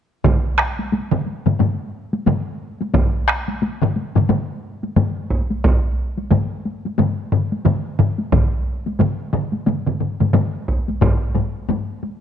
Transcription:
0.24 taiko, taiko low-mid, taiko mid, taiko high
0.58 taiko rim
0.79 taiko high
0.92 taiko high
1.12 taiko low-mid, taiko mid
1.26 taiko high
1.46 taiko low-mid, taiko mid, taiko high
1.59 taiko low-mid, taiko mid, taiko high
2.13 taiko high
2.26 taiko low-mid, taiko mid, taiko high
2.81 taiko high
2.94 taiko, taiko low-mid, taiko mid, taiko high
3.28 taiko rim
3.48 taiko high
3.62 taiko high
3.82 taiko low-mid, taiko mid
3.96 taiko high
4.15 taiko low-mid, taiko mid, taiko high
4.29 taiko low-mid, taiko mid, taiko high
4.83 taiko high
4.96 taiko low-mid, taiko mid, taiko high
5.30 taiko
5.50 taiko high
5.64 taiko, taiko high
6.18 taiko high
6.31 taiko low-mid, taiko mid, taiko high
6.65 taiko high
6.85 taiko high
6.98 taiko low-mid, taiko mid, taiko high
7.32 taiko low-mid, taiko mid
7.52 taiko high
7.65 taiko low-mid, taiko mid, taiko high
7.99 taiko low-mid, taiko mid
8.18 taiko high
8.32 taiko, taiko low-mid, taiko mid, taiko high
8.86 taiko high
9.00 taiko low-mid, taiko mid, taiko high
9.33 taiko low-mid, taiko mid
9.53 taiko high
9.66 taiko low-mid, taiko mid, taiko high
9.87 taiko low-mid, taiko mid
10.00 taiko low-mid, taiko mid
10.20 taiko low-mid, taiko mid, taiko high
10.34 taiko low-mid, taiko mid, taiko high
10.68 taiko
10.88 taiko high
11.01 taiko, taiko low-mid, taiko high
11.35 taiko low-mid, taiko high
11.69 taiko low-mid, taiko high
12.03 taiko high

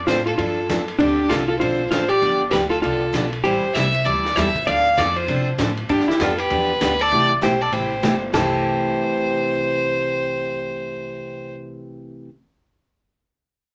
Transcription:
0.07 A2 F3 C4 D4 F4 A4 C5, kick, snare, hi-hat pedal, ride
0.26 F4 A4, ride
0.37 G2 F3 C4 D4 F4 A4, kick, ride
0.69 F2 F3 C4 D4 A4, kick, snare, hi-hat pedal, ride
0.88 ride
0.98 D2 D3 F3 C4 D4 G4 A4, kick, ride
1.29 C2 D3 F3 C4 D4 F4 A4, kick, snare, hi-hat pedal, ride
1.47 F4 A4
1.59 B1 D3 F3 C4 D4 F4 A4 C5, kick, ride
1.90 A1 D3 F3 C4 D4 F4 A4 C5, kick, snare, hi-hat pedal, ride
2.09 G4 D5, ride
2.22 G1 D3 F3 B3 D4 G4, kick, ride
2.51 D2 D3 F3 B3 D4 G4 B4, kick, snare, hi-hat pedal, ride
2.69 F4 A4, ride
2.81 C2 D3 F3 B3 D4 F4 G4 A4, kick, ride
3.13 B1 D3 F3 B3 D4 G4, kick, snare, hi-hat pedal, ride
3.33 ride
3.43 A1 E3 G3 C4 E4 G4 A4 C5, kick, ride
3.63 muted upright bass stroke
3.74 C2 E3 G3 C4 E4 A4 C5 E5, kick, snare, hi-hat pedal, ride
3.94 ride
4.05 D2 E3 G3 C4 E4 A4 D5, kick, ride
4.25 snare
4.35 E2 E3 G3 C4 E4 A4 C5 E5, kick, snare, hi-hat pedal, ride
4.55 muted upright bass stroke, kick, ride
4.67 D2 D3 F3 C4 D4 A4 D5 F5, kick, ride
4.97 F2 D3 F3 C4 D4 A4 D5, kick, snare, hi-hat pedal, ride
5.16 F4 C5, ride
5.28 C3 D3 F3 C4 D4 A4, kick, ride
5.58 A2 D3 F3 C4 D4 A4, kick, snare, hi-hat pedal, ride
5.77 ride
5.89 G2 D3 F3 B3 D4 G4, kick, ride
6.00 snare
6.08 E4 G4, muted upright bass stroke, snare
6.20 F2 D3 F3 B3 D4 F4 G4 A4, kick, snare, hi-hat pedal, ride
6.38 G4 B4, ride
6.50 E2 D3 F3 B3 D4 G4, kick, ride
6.81 D2 D3 F3 B3 D4 G4, kick, snare, hi-hat pedal, ride
6.99 A4 D5, ride
7.11 C2 C3 E3 A3 E4 G4, kick, ride
7.41 B1 C3 E3 A3 E4 G4 C5, kick, snare, hi-hat pedal, ride
7.61 A4 D5
7.72 A1 C3 E3 A3 E4 G4 C5, kick, ride
8.03 G1 C3 E3 A3 E4 G4, kick, snare, hi-hat pedal, ride
8.33 C2 C3 E3 A3 E4 G4 A4 C5, snare, floor tom, crash

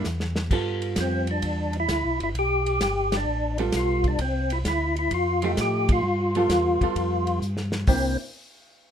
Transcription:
0.04 E2, snare, hi-hat pedal
0.20 snare
0.36 snare
0.51 G2 G3 B3 F4 A4, kick, crash
0.82 ride
0.96 F2, kick, snare, hi-hat pedal, ride
1.01 C4
1.27 D4, ride
1.42 E2, kick, ride
1.73 ride
1.80 E4
1.89 D2, kick, snare, hi-hat pedal, ride
2.05 B1
2.20 G1 E4, ride
2.35 B1 G4, kick, ride
2.66 ride
2.81 G1, kick, snare, hi-hat pedal, ride
3.12 snare, ride
3.17 D4
3.26 A1
3.58 G3 B3 F4 A4, ride
3.72 B1, kick, snare, hi-hat pedal, ride
3.77 F4
4.04 D4, kick, ride
4.19 C2 C4, kick, ride
4.50 E4, ride
4.65 D2 E4, kick, snare, hi-hat pedal, ride
4.96 E4, ride
5.11 F2 F4, kick, ride
5.42 F3 A3 D#4 F4 G4, ride
5.57 A2 G4, kick, snare, hi-hat pedal, ride
5.89 F4, kick, ride
6.03 G2
6.35 G3 B3 F4 A4, ride
6.49 E2, kick, snare, hi-hat pedal, ride
6.81 E2 G3 B3 F4 A4, kick, ride
6.96 F2, kick, ride
7.27 ride
7.42 G2, hi-hat pedal
7.57 snare
7.72 snare
7.87 C2 A#3 C4 D4 E4, kick, open hi-hat

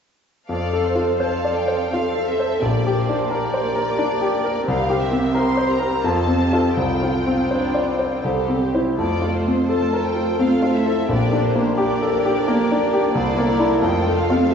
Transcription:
0.48 F2 C4 A4 D5 F5
0.73 A4
0.85 C5
0.95 F4
1.20 C4 A4 C5 F5 A5
1.45 D5
1.56 G5
1.68 C5
1.92 C4 F4 A4 F5
2.15 A4
2.29 E5
2.40 C5
2.62 A#1 A#3 G4 A#4 D5
2.87 G4
2.97 C5
3.09 D4
3.30 A#3 G4 A#4 D5
3.54 C5
3.75 A#4
3.99 D4
4.21 G4
4.44 A#4
4.66 C2 C4 G4 A#4 C5 F5
4.90 G4
5.02 E5
5.11 C4
5.35 C4 G4 A#4 C5 C6
5.57 C5
5.70 A#5
5.80 A#4
6.04 F2 C4 F4 A4 C5 A5
6.27 C4
6.42 G4
6.53 F4 A4
6.76 C2 C4 F4 C5 G5
7.02 F4
7.27 C4
7.51 D4 C5
7.74 D5
7.88 C4
7.99 C5
8.24 C2 G4 A4 C5
8.48 C4
8.61 G4
8.74 E4 C5
8.98 F2 A3 F4 A4 C5 D5
9.22 F4
9.34 C5
9.47 C4
9.68 A3 F4 A4 C5 A5
9.93 A#4
10.04 G5
10.17 A4
10.39 A3 C4 F4 A4 C5 F5
10.62 F4
10.74 E4 E5
10.86 A4
11.07 A#1 A#3 D4 G4 A#4 D5
11.33 D4
11.43 C5
11.55 A#3
11.77 A#3 D4 G4 A#4 D5
12.02 A4
12.25 G4
12.48 A#3
12.72 D4
12.93 G4
13.12 C2 A#3 E4 A4 C5 D5
13.37 A#3
13.48 A#4
13.59 D4 E4
13.81 F2 A3 F4 A4 C5 G5
14.07 A3
14.17 F5
14.30 C4 F4
14.51 E5

